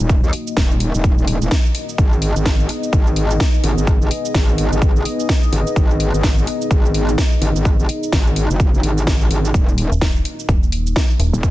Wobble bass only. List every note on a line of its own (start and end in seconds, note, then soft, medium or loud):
0.00 0.21 D#1 loud
0.23 0.31 D#2 loud
0.57 0.92 D#1 loud
0.94 1.39 D#1 loud
1.42 1.50 E1 loud
1.98 2.34 G#1 loud
2.36 2.68 G#1 loud
2.93 3.39 G#1 loud
3.64 3.75 G#1 loud
3.78 3.99 G#1 loud
4.01 4.09 G#1 loud
4.34 4.70 G#1 medium
4.72 5.04 G#1 loud
5.53 5.64 G#1 loud
5.76 6.12 G#1 loud
6.14 6.46 G#1 loud
6.71 7.16 G#1 loud
7.41 7.53 G#1 loud
7.56 7.77 G#1 loud
7.79 7.87 G#1 loud
8.12 8.48 G#1 loud
8.50 8.82 F#1 loud
8.83 9.29 G#1 medium
9.30 9.53 G#1 loud
9.54 9.90 D#1 loud
11.33 11.51 D#1 loud